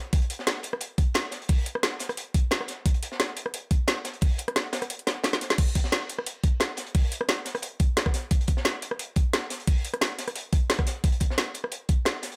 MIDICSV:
0, 0, Header, 1, 2, 480
1, 0, Start_track
1, 0, Tempo, 340909
1, 182, Time_signature, 4, 2, 24, 8
1, 17406, End_track
2, 0, Start_track
2, 0, Title_t, "Drums"
2, 181, Note_on_c, 9, 42, 89
2, 183, Note_on_c, 9, 36, 120
2, 190, Note_off_c, 9, 42, 0
2, 190, Note_on_c, 9, 42, 85
2, 307, Note_off_c, 9, 42, 0
2, 307, Note_on_c, 9, 42, 41
2, 323, Note_off_c, 9, 36, 0
2, 422, Note_off_c, 9, 42, 0
2, 422, Note_on_c, 9, 42, 62
2, 429, Note_off_c, 9, 42, 0
2, 429, Note_on_c, 9, 42, 70
2, 550, Note_on_c, 9, 38, 44
2, 570, Note_off_c, 9, 42, 0
2, 661, Note_off_c, 9, 38, 0
2, 661, Note_on_c, 9, 38, 118
2, 661, Note_on_c, 9, 42, 91
2, 669, Note_off_c, 9, 38, 0
2, 669, Note_on_c, 9, 38, 127
2, 802, Note_off_c, 9, 42, 0
2, 810, Note_off_c, 9, 38, 0
2, 890, Note_on_c, 9, 42, 72
2, 902, Note_off_c, 9, 42, 0
2, 902, Note_on_c, 9, 42, 66
2, 1030, Note_on_c, 9, 37, 47
2, 1043, Note_off_c, 9, 42, 0
2, 1136, Note_on_c, 9, 42, 84
2, 1142, Note_off_c, 9, 42, 0
2, 1142, Note_on_c, 9, 42, 89
2, 1171, Note_off_c, 9, 37, 0
2, 1283, Note_off_c, 9, 42, 0
2, 1380, Note_on_c, 9, 42, 66
2, 1382, Note_off_c, 9, 42, 0
2, 1382, Note_on_c, 9, 42, 66
2, 1383, Note_on_c, 9, 36, 116
2, 1523, Note_off_c, 9, 36, 0
2, 1523, Note_off_c, 9, 42, 0
2, 1612, Note_on_c, 9, 42, 92
2, 1618, Note_on_c, 9, 38, 117
2, 1622, Note_off_c, 9, 38, 0
2, 1622, Note_off_c, 9, 42, 0
2, 1622, Note_on_c, 9, 38, 127
2, 1622, Note_on_c, 9, 42, 91
2, 1763, Note_off_c, 9, 38, 0
2, 1763, Note_off_c, 9, 42, 0
2, 1849, Note_on_c, 9, 38, 47
2, 1855, Note_on_c, 9, 42, 68
2, 1862, Note_off_c, 9, 42, 0
2, 1862, Note_on_c, 9, 42, 63
2, 1990, Note_off_c, 9, 38, 0
2, 1995, Note_off_c, 9, 42, 0
2, 1995, Note_on_c, 9, 42, 43
2, 2092, Note_on_c, 9, 46, 85
2, 2100, Note_off_c, 9, 42, 0
2, 2100, Note_on_c, 9, 42, 95
2, 2102, Note_on_c, 9, 36, 120
2, 2233, Note_off_c, 9, 46, 0
2, 2241, Note_off_c, 9, 42, 0
2, 2243, Note_off_c, 9, 36, 0
2, 2338, Note_on_c, 9, 42, 66
2, 2340, Note_off_c, 9, 42, 0
2, 2340, Note_on_c, 9, 42, 68
2, 2467, Note_on_c, 9, 37, 54
2, 2481, Note_off_c, 9, 42, 0
2, 2579, Note_on_c, 9, 38, 118
2, 2579, Note_on_c, 9, 42, 94
2, 2582, Note_off_c, 9, 38, 0
2, 2582, Note_on_c, 9, 38, 118
2, 2608, Note_off_c, 9, 37, 0
2, 2720, Note_off_c, 9, 42, 0
2, 2723, Note_off_c, 9, 38, 0
2, 2809, Note_on_c, 9, 42, 65
2, 2820, Note_on_c, 9, 38, 48
2, 2820, Note_on_c, 9, 46, 87
2, 2945, Note_off_c, 9, 42, 0
2, 2945, Note_on_c, 9, 42, 39
2, 2947, Note_on_c, 9, 37, 44
2, 2960, Note_off_c, 9, 38, 0
2, 2961, Note_off_c, 9, 46, 0
2, 3061, Note_off_c, 9, 42, 0
2, 3061, Note_on_c, 9, 42, 87
2, 3067, Note_off_c, 9, 42, 0
2, 3067, Note_on_c, 9, 42, 79
2, 3088, Note_off_c, 9, 37, 0
2, 3208, Note_off_c, 9, 42, 0
2, 3300, Note_on_c, 9, 42, 68
2, 3302, Note_on_c, 9, 36, 108
2, 3306, Note_off_c, 9, 42, 0
2, 3306, Note_on_c, 9, 42, 68
2, 3443, Note_off_c, 9, 36, 0
2, 3447, Note_off_c, 9, 42, 0
2, 3533, Note_on_c, 9, 38, 123
2, 3537, Note_on_c, 9, 42, 92
2, 3542, Note_off_c, 9, 38, 0
2, 3542, Note_off_c, 9, 42, 0
2, 3542, Note_on_c, 9, 38, 118
2, 3542, Note_on_c, 9, 42, 95
2, 3669, Note_on_c, 9, 37, 47
2, 3683, Note_off_c, 9, 38, 0
2, 3683, Note_off_c, 9, 42, 0
2, 3775, Note_on_c, 9, 42, 69
2, 3782, Note_off_c, 9, 42, 0
2, 3782, Note_on_c, 9, 42, 67
2, 3793, Note_on_c, 9, 38, 41
2, 3810, Note_off_c, 9, 37, 0
2, 3923, Note_off_c, 9, 42, 0
2, 3934, Note_off_c, 9, 38, 0
2, 4021, Note_on_c, 9, 42, 98
2, 4022, Note_off_c, 9, 42, 0
2, 4022, Note_on_c, 9, 36, 115
2, 4022, Note_on_c, 9, 42, 90
2, 4143, Note_off_c, 9, 42, 0
2, 4143, Note_on_c, 9, 42, 44
2, 4163, Note_off_c, 9, 36, 0
2, 4260, Note_off_c, 9, 42, 0
2, 4260, Note_on_c, 9, 42, 69
2, 4265, Note_off_c, 9, 42, 0
2, 4265, Note_on_c, 9, 42, 76
2, 4388, Note_on_c, 9, 38, 46
2, 4406, Note_off_c, 9, 42, 0
2, 4501, Note_off_c, 9, 38, 0
2, 4501, Note_on_c, 9, 38, 114
2, 4501, Note_on_c, 9, 42, 97
2, 4502, Note_off_c, 9, 38, 0
2, 4502, Note_on_c, 9, 38, 122
2, 4503, Note_off_c, 9, 42, 0
2, 4503, Note_on_c, 9, 42, 89
2, 4643, Note_off_c, 9, 38, 0
2, 4644, Note_off_c, 9, 42, 0
2, 4738, Note_on_c, 9, 42, 79
2, 4741, Note_off_c, 9, 42, 0
2, 4741, Note_on_c, 9, 42, 68
2, 4868, Note_on_c, 9, 37, 47
2, 4882, Note_off_c, 9, 42, 0
2, 4981, Note_on_c, 9, 42, 97
2, 4986, Note_off_c, 9, 42, 0
2, 4986, Note_on_c, 9, 42, 90
2, 5009, Note_off_c, 9, 37, 0
2, 5127, Note_off_c, 9, 42, 0
2, 5220, Note_on_c, 9, 42, 63
2, 5221, Note_off_c, 9, 42, 0
2, 5221, Note_on_c, 9, 42, 70
2, 5223, Note_on_c, 9, 36, 110
2, 5362, Note_off_c, 9, 42, 0
2, 5363, Note_off_c, 9, 36, 0
2, 5457, Note_on_c, 9, 38, 127
2, 5460, Note_on_c, 9, 42, 89
2, 5461, Note_off_c, 9, 38, 0
2, 5461, Note_off_c, 9, 42, 0
2, 5461, Note_on_c, 9, 38, 121
2, 5461, Note_on_c, 9, 42, 97
2, 5602, Note_off_c, 9, 38, 0
2, 5602, Note_off_c, 9, 42, 0
2, 5697, Note_on_c, 9, 42, 72
2, 5698, Note_on_c, 9, 38, 50
2, 5702, Note_off_c, 9, 42, 0
2, 5702, Note_on_c, 9, 42, 68
2, 5822, Note_off_c, 9, 42, 0
2, 5822, Note_on_c, 9, 42, 41
2, 5839, Note_off_c, 9, 38, 0
2, 5930, Note_on_c, 9, 46, 73
2, 5942, Note_off_c, 9, 42, 0
2, 5942, Note_on_c, 9, 36, 117
2, 5942, Note_on_c, 9, 42, 98
2, 6071, Note_off_c, 9, 46, 0
2, 6083, Note_off_c, 9, 36, 0
2, 6083, Note_off_c, 9, 42, 0
2, 6172, Note_on_c, 9, 42, 72
2, 6182, Note_off_c, 9, 42, 0
2, 6182, Note_on_c, 9, 42, 74
2, 6308, Note_off_c, 9, 42, 0
2, 6308, Note_on_c, 9, 37, 60
2, 6308, Note_on_c, 9, 42, 38
2, 6420, Note_off_c, 9, 42, 0
2, 6420, Note_on_c, 9, 38, 116
2, 6420, Note_on_c, 9, 42, 102
2, 6421, Note_off_c, 9, 38, 0
2, 6421, Note_off_c, 9, 42, 0
2, 6421, Note_on_c, 9, 38, 123
2, 6421, Note_on_c, 9, 42, 93
2, 6449, Note_off_c, 9, 37, 0
2, 6561, Note_off_c, 9, 42, 0
2, 6562, Note_off_c, 9, 38, 0
2, 6656, Note_on_c, 9, 38, 113
2, 6658, Note_on_c, 9, 42, 76
2, 6660, Note_on_c, 9, 37, 34
2, 6660, Note_on_c, 9, 46, 75
2, 6786, Note_off_c, 9, 37, 0
2, 6786, Note_off_c, 9, 42, 0
2, 6786, Note_on_c, 9, 37, 46
2, 6786, Note_on_c, 9, 42, 38
2, 6788, Note_off_c, 9, 42, 0
2, 6788, Note_on_c, 9, 42, 45
2, 6797, Note_off_c, 9, 38, 0
2, 6801, Note_off_c, 9, 46, 0
2, 6899, Note_off_c, 9, 42, 0
2, 6899, Note_on_c, 9, 42, 87
2, 6900, Note_off_c, 9, 42, 0
2, 6900, Note_on_c, 9, 42, 96
2, 6927, Note_off_c, 9, 37, 0
2, 7028, Note_off_c, 9, 42, 0
2, 7028, Note_on_c, 9, 42, 40
2, 7137, Note_on_c, 9, 38, 97
2, 7140, Note_off_c, 9, 38, 0
2, 7140, Note_off_c, 9, 42, 0
2, 7140, Note_on_c, 9, 38, 66
2, 7140, Note_on_c, 9, 42, 74
2, 7145, Note_off_c, 9, 42, 0
2, 7145, Note_on_c, 9, 42, 73
2, 7281, Note_off_c, 9, 38, 0
2, 7286, Note_off_c, 9, 42, 0
2, 7372, Note_on_c, 9, 38, 122
2, 7376, Note_on_c, 9, 42, 84
2, 7381, Note_off_c, 9, 38, 0
2, 7381, Note_off_c, 9, 42, 0
2, 7381, Note_on_c, 9, 38, 82
2, 7381, Note_on_c, 9, 42, 100
2, 7508, Note_off_c, 9, 38, 0
2, 7508, Note_on_c, 9, 38, 78
2, 7522, Note_off_c, 9, 42, 0
2, 7621, Note_on_c, 9, 42, 71
2, 7624, Note_off_c, 9, 42, 0
2, 7624, Note_on_c, 9, 42, 61
2, 7628, Note_off_c, 9, 38, 0
2, 7628, Note_on_c, 9, 38, 43
2, 7748, Note_off_c, 9, 38, 0
2, 7748, Note_on_c, 9, 38, 91
2, 7765, Note_off_c, 9, 42, 0
2, 7858, Note_on_c, 9, 42, 91
2, 7861, Note_off_c, 9, 42, 0
2, 7861, Note_on_c, 9, 42, 100
2, 7861, Note_on_c, 9, 49, 107
2, 7863, Note_on_c, 9, 36, 127
2, 7889, Note_off_c, 9, 38, 0
2, 7992, Note_off_c, 9, 42, 0
2, 7992, Note_on_c, 9, 42, 44
2, 8002, Note_off_c, 9, 49, 0
2, 8004, Note_off_c, 9, 36, 0
2, 8100, Note_off_c, 9, 42, 0
2, 8100, Note_on_c, 9, 42, 73
2, 8103, Note_on_c, 9, 36, 65
2, 8111, Note_off_c, 9, 42, 0
2, 8111, Note_on_c, 9, 42, 77
2, 8223, Note_on_c, 9, 38, 49
2, 8244, Note_off_c, 9, 36, 0
2, 8251, Note_off_c, 9, 42, 0
2, 8336, Note_on_c, 9, 42, 83
2, 8337, Note_off_c, 9, 38, 0
2, 8337, Note_on_c, 9, 38, 116
2, 8340, Note_off_c, 9, 38, 0
2, 8340, Note_off_c, 9, 42, 0
2, 8340, Note_on_c, 9, 38, 127
2, 8340, Note_on_c, 9, 42, 100
2, 8481, Note_off_c, 9, 38, 0
2, 8481, Note_off_c, 9, 42, 0
2, 8582, Note_on_c, 9, 42, 74
2, 8584, Note_off_c, 9, 42, 0
2, 8584, Note_on_c, 9, 42, 64
2, 8709, Note_on_c, 9, 37, 50
2, 8725, Note_off_c, 9, 42, 0
2, 8821, Note_on_c, 9, 42, 96
2, 8850, Note_off_c, 9, 37, 0
2, 8962, Note_off_c, 9, 42, 0
2, 9060, Note_on_c, 9, 42, 73
2, 9061, Note_off_c, 9, 42, 0
2, 9061, Note_on_c, 9, 42, 72
2, 9063, Note_on_c, 9, 36, 109
2, 9202, Note_off_c, 9, 42, 0
2, 9204, Note_off_c, 9, 36, 0
2, 9292, Note_on_c, 9, 38, 117
2, 9296, Note_on_c, 9, 42, 92
2, 9301, Note_off_c, 9, 38, 0
2, 9301, Note_off_c, 9, 42, 0
2, 9301, Note_on_c, 9, 38, 124
2, 9301, Note_on_c, 9, 42, 103
2, 9441, Note_off_c, 9, 38, 0
2, 9441, Note_off_c, 9, 42, 0
2, 9533, Note_on_c, 9, 42, 73
2, 9541, Note_on_c, 9, 38, 48
2, 9541, Note_on_c, 9, 46, 78
2, 9666, Note_off_c, 9, 42, 0
2, 9666, Note_on_c, 9, 42, 42
2, 9682, Note_off_c, 9, 38, 0
2, 9682, Note_off_c, 9, 46, 0
2, 9781, Note_off_c, 9, 42, 0
2, 9781, Note_on_c, 9, 42, 93
2, 9783, Note_on_c, 9, 36, 127
2, 9789, Note_on_c, 9, 46, 88
2, 9922, Note_off_c, 9, 42, 0
2, 9924, Note_off_c, 9, 36, 0
2, 9929, Note_off_c, 9, 46, 0
2, 10022, Note_on_c, 9, 42, 66
2, 10032, Note_off_c, 9, 42, 0
2, 10032, Note_on_c, 9, 42, 64
2, 10148, Note_on_c, 9, 37, 60
2, 10173, Note_off_c, 9, 42, 0
2, 10258, Note_on_c, 9, 42, 94
2, 10260, Note_off_c, 9, 42, 0
2, 10260, Note_on_c, 9, 38, 127
2, 10260, Note_on_c, 9, 42, 94
2, 10262, Note_off_c, 9, 38, 0
2, 10262, Note_on_c, 9, 38, 127
2, 10289, Note_off_c, 9, 37, 0
2, 10401, Note_off_c, 9, 42, 0
2, 10403, Note_off_c, 9, 38, 0
2, 10494, Note_on_c, 9, 38, 50
2, 10499, Note_on_c, 9, 42, 68
2, 10500, Note_off_c, 9, 42, 0
2, 10500, Note_on_c, 9, 42, 66
2, 10627, Note_on_c, 9, 37, 50
2, 10630, Note_off_c, 9, 42, 0
2, 10630, Note_on_c, 9, 42, 42
2, 10634, Note_off_c, 9, 38, 0
2, 10734, Note_off_c, 9, 42, 0
2, 10734, Note_on_c, 9, 42, 87
2, 10741, Note_off_c, 9, 42, 0
2, 10741, Note_on_c, 9, 42, 97
2, 10768, Note_off_c, 9, 37, 0
2, 10882, Note_off_c, 9, 42, 0
2, 10977, Note_on_c, 9, 42, 63
2, 10981, Note_off_c, 9, 42, 0
2, 10981, Note_on_c, 9, 42, 67
2, 10982, Note_on_c, 9, 36, 118
2, 11122, Note_off_c, 9, 42, 0
2, 11123, Note_off_c, 9, 36, 0
2, 11219, Note_on_c, 9, 42, 92
2, 11220, Note_off_c, 9, 42, 0
2, 11220, Note_on_c, 9, 38, 127
2, 11220, Note_on_c, 9, 42, 97
2, 11224, Note_off_c, 9, 38, 0
2, 11224, Note_on_c, 9, 38, 116
2, 11347, Note_on_c, 9, 37, 54
2, 11348, Note_on_c, 9, 36, 67
2, 11361, Note_off_c, 9, 42, 0
2, 11364, Note_off_c, 9, 38, 0
2, 11459, Note_on_c, 9, 46, 80
2, 11463, Note_on_c, 9, 38, 44
2, 11467, Note_on_c, 9, 42, 66
2, 11488, Note_off_c, 9, 37, 0
2, 11489, Note_off_c, 9, 36, 0
2, 11600, Note_off_c, 9, 46, 0
2, 11604, Note_off_c, 9, 38, 0
2, 11608, Note_off_c, 9, 42, 0
2, 11698, Note_on_c, 9, 42, 82
2, 11700, Note_off_c, 9, 42, 0
2, 11700, Note_on_c, 9, 42, 93
2, 11702, Note_on_c, 9, 36, 127
2, 11838, Note_off_c, 9, 42, 0
2, 11838, Note_on_c, 9, 42, 45
2, 11843, Note_off_c, 9, 36, 0
2, 11932, Note_off_c, 9, 42, 0
2, 11932, Note_on_c, 9, 42, 68
2, 11939, Note_off_c, 9, 42, 0
2, 11939, Note_on_c, 9, 42, 68
2, 11942, Note_on_c, 9, 36, 70
2, 12065, Note_on_c, 9, 38, 49
2, 12080, Note_off_c, 9, 42, 0
2, 12082, Note_off_c, 9, 36, 0
2, 12176, Note_off_c, 9, 38, 0
2, 12176, Note_on_c, 9, 38, 114
2, 12180, Note_on_c, 9, 42, 92
2, 12181, Note_off_c, 9, 38, 0
2, 12181, Note_off_c, 9, 42, 0
2, 12181, Note_on_c, 9, 38, 127
2, 12181, Note_on_c, 9, 42, 91
2, 12322, Note_off_c, 9, 38, 0
2, 12322, Note_off_c, 9, 42, 0
2, 12422, Note_on_c, 9, 42, 66
2, 12425, Note_off_c, 9, 42, 0
2, 12425, Note_on_c, 9, 42, 74
2, 12549, Note_on_c, 9, 37, 52
2, 12566, Note_off_c, 9, 42, 0
2, 12663, Note_on_c, 9, 42, 88
2, 12690, Note_off_c, 9, 37, 0
2, 12804, Note_off_c, 9, 42, 0
2, 12895, Note_on_c, 9, 42, 63
2, 12902, Note_on_c, 9, 36, 120
2, 12903, Note_off_c, 9, 42, 0
2, 12903, Note_on_c, 9, 42, 69
2, 13043, Note_off_c, 9, 36, 0
2, 13044, Note_off_c, 9, 42, 0
2, 13143, Note_on_c, 9, 38, 127
2, 13143, Note_on_c, 9, 42, 95
2, 13145, Note_off_c, 9, 42, 0
2, 13145, Note_on_c, 9, 42, 84
2, 13148, Note_off_c, 9, 38, 0
2, 13148, Note_on_c, 9, 38, 127
2, 13286, Note_off_c, 9, 42, 0
2, 13289, Note_off_c, 9, 38, 0
2, 13381, Note_on_c, 9, 42, 68
2, 13382, Note_on_c, 9, 46, 78
2, 13383, Note_on_c, 9, 38, 51
2, 13514, Note_off_c, 9, 42, 0
2, 13514, Note_on_c, 9, 42, 46
2, 13522, Note_off_c, 9, 46, 0
2, 13524, Note_off_c, 9, 38, 0
2, 13622, Note_off_c, 9, 42, 0
2, 13622, Note_on_c, 9, 42, 91
2, 13623, Note_on_c, 9, 36, 126
2, 13626, Note_on_c, 9, 46, 81
2, 13762, Note_off_c, 9, 42, 0
2, 13764, Note_off_c, 9, 36, 0
2, 13766, Note_off_c, 9, 46, 0
2, 13862, Note_on_c, 9, 42, 63
2, 13865, Note_off_c, 9, 42, 0
2, 13865, Note_on_c, 9, 42, 66
2, 13989, Note_off_c, 9, 42, 0
2, 13989, Note_on_c, 9, 37, 55
2, 13989, Note_on_c, 9, 42, 34
2, 14098, Note_on_c, 9, 38, 111
2, 14102, Note_off_c, 9, 38, 0
2, 14102, Note_off_c, 9, 42, 0
2, 14102, Note_on_c, 9, 38, 125
2, 14102, Note_on_c, 9, 42, 89
2, 14110, Note_off_c, 9, 42, 0
2, 14110, Note_on_c, 9, 42, 96
2, 14130, Note_off_c, 9, 37, 0
2, 14243, Note_off_c, 9, 38, 0
2, 14251, Note_off_c, 9, 42, 0
2, 14341, Note_on_c, 9, 38, 48
2, 14341, Note_on_c, 9, 42, 67
2, 14344, Note_off_c, 9, 42, 0
2, 14344, Note_on_c, 9, 42, 75
2, 14469, Note_off_c, 9, 42, 0
2, 14469, Note_on_c, 9, 37, 45
2, 14469, Note_on_c, 9, 42, 36
2, 14474, Note_off_c, 9, 42, 0
2, 14474, Note_on_c, 9, 42, 44
2, 14482, Note_off_c, 9, 38, 0
2, 14580, Note_off_c, 9, 42, 0
2, 14580, Note_on_c, 9, 42, 83
2, 14583, Note_off_c, 9, 42, 0
2, 14583, Note_on_c, 9, 42, 93
2, 14610, Note_off_c, 9, 37, 0
2, 14724, Note_off_c, 9, 42, 0
2, 14819, Note_on_c, 9, 42, 71
2, 14821, Note_off_c, 9, 42, 0
2, 14821, Note_on_c, 9, 42, 67
2, 14822, Note_on_c, 9, 36, 119
2, 14962, Note_off_c, 9, 42, 0
2, 14963, Note_off_c, 9, 36, 0
2, 15061, Note_on_c, 9, 38, 127
2, 15061, Note_on_c, 9, 42, 91
2, 15064, Note_off_c, 9, 42, 0
2, 15064, Note_on_c, 9, 42, 100
2, 15068, Note_off_c, 9, 38, 0
2, 15068, Note_on_c, 9, 38, 111
2, 15188, Note_on_c, 9, 37, 48
2, 15189, Note_on_c, 9, 36, 68
2, 15205, Note_off_c, 9, 42, 0
2, 15209, Note_off_c, 9, 38, 0
2, 15300, Note_on_c, 9, 38, 44
2, 15301, Note_on_c, 9, 46, 78
2, 15305, Note_on_c, 9, 42, 67
2, 15329, Note_off_c, 9, 37, 0
2, 15330, Note_off_c, 9, 36, 0
2, 15441, Note_off_c, 9, 38, 0
2, 15441, Note_off_c, 9, 46, 0
2, 15445, Note_off_c, 9, 42, 0
2, 15541, Note_on_c, 9, 42, 91
2, 15542, Note_on_c, 9, 36, 118
2, 15550, Note_off_c, 9, 42, 0
2, 15550, Note_on_c, 9, 42, 82
2, 15660, Note_off_c, 9, 42, 0
2, 15660, Note_on_c, 9, 42, 47
2, 15683, Note_off_c, 9, 36, 0
2, 15773, Note_off_c, 9, 42, 0
2, 15773, Note_on_c, 9, 42, 77
2, 15781, Note_off_c, 9, 42, 0
2, 15781, Note_on_c, 9, 42, 64
2, 15782, Note_on_c, 9, 36, 65
2, 15916, Note_on_c, 9, 38, 46
2, 15922, Note_off_c, 9, 42, 0
2, 15923, Note_off_c, 9, 36, 0
2, 16020, Note_off_c, 9, 38, 0
2, 16020, Note_on_c, 9, 38, 122
2, 16020, Note_on_c, 9, 42, 95
2, 16021, Note_off_c, 9, 38, 0
2, 16021, Note_on_c, 9, 38, 114
2, 16026, Note_off_c, 9, 42, 0
2, 16026, Note_on_c, 9, 42, 87
2, 16161, Note_off_c, 9, 38, 0
2, 16167, Note_off_c, 9, 42, 0
2, 16254, Note_on_c, 9, 42, 63
2, 16260, Note_off_c, 9, 42, 0
2, 16260, Note_on_c, 9, 42, 64
2, 16388, Note_on_c, 9, 37, 45
2, 16401, Note_off_c, 9, 42, 0
2, 16497, Note_on_c, 9, 42, 83
2, 16501, Note_off_c, 9, 42, 0
2, 16501, Note_on_c, 9, 42, 87
2, 16529, Note_off_c, 9, 37, 0
2, 16642, Note_off_c, 9, 42, 0
2, 16737, Note_on_c, 9, 42, 69
2, 16741, Note_off_c, 9, 42, 0
2, 16741, Note_on_c, 9, 42, 68
2, 16742, Note_on_c, 9, 36, 114
2, 16881, Note_off_c, 9, 42, 0
2, 16883, Note_off_c, 9, 36, 0
2, 16972, Note_on_c, 9, 38, 126
2, 16979, Note_on_c, 9, 42, 83
2, 16981, Note_off_c, 9, 38, 0
2, 16981, Note_off_c, 9, 42, 0
2, 16981, Note_on_c, 9, 38, 126
2, 16981, Note_on_c, 9, 42, 96
2, 17121, Note_off_c, 9, 38, 0
2, 17121, Note_off_c, 9, 42, 0
2, 17215, Note_on_c, 9, 42, 74
2, 17216, Note_on_c, 9, 38, 47
2, 17221, Note_on_c, 9, 46, 83
2, 17343, Note_off_c, 9, 42, 0
2, 17343, Note_on_c, 9, 42, 41
2, 17357, Note_off_c, 9, 38, 0
2, 17361, Note_off_c, 9, 46, 0
2, 17406, Note_off_c, 9, 42, 0
2, 17406, End_track
0, 0, End_of_file